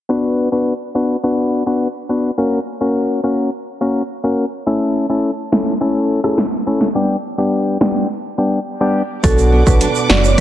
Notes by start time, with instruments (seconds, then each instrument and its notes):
0.09 synth stab B3 D4 F#4 B4
0.52 synth stab B3 D4 F#4 B4
0.95 synth stab B3 D4 F#4 B4
1.23 synth stab B3 D4 F#4 B4
1.66 synth stab B3 D4 F#4 B4
2.09 synth stab B3 D4 F#4 B4
2.38 synth stab A#3 C#4 F#4 A#4
2.81 synth stab A#3 C#4 F#4 A#4
3.23 synth stab A#3 C#4 F#4 A#4
3.81 synth stab A#3 C#4 F#4 A#4
4.24 synth stab A#3 C#4 F#4 A#4
4.66 synth stab A3 C#4 E4 A4
5.09 synth stab A3 C#4 E4 A4
5.52 synth stab A3 C#4 E4 A4, snare
5.81 synth stab A3 C#4 E4 A4
6.24 synth stab A3 C#4 E4 A4, cross-stick
6.38 snare
6.66 synth stab A3 C#4 E4 A4
6.81 snare
6.95 synth stab G3 B3 D4 G4
7.38 synth stab G3 B3 D4 G4
7.81 synth stab G3 B3 D4 G4, snare
8.38 synth stab G3 B3 D4 G4
8.81 synth stab G3 B3 D4 G4
9.23 sub bass B1, nylon-string guitar B2, synth stab F#3 B3 D4 F#4, marimba A4, string section B4 D5 F#5 D6, kick, closed hi-hat, shaker
9.38 shaker
9.52 nylon-string guitar B3
9.66 sub bass B1, synth stab F#3 B3 D4 F#4, marimba B4, kick, shaker
9.81 nylon-string guitar D4, closed hi-hat, shaker
9.95 shaker
10.09 sub bass F#1, synth stab F#3 B3 D4 F#4, nylon-string guitar F#3, marimba D5, snare
10.24 marimba C#5, shaker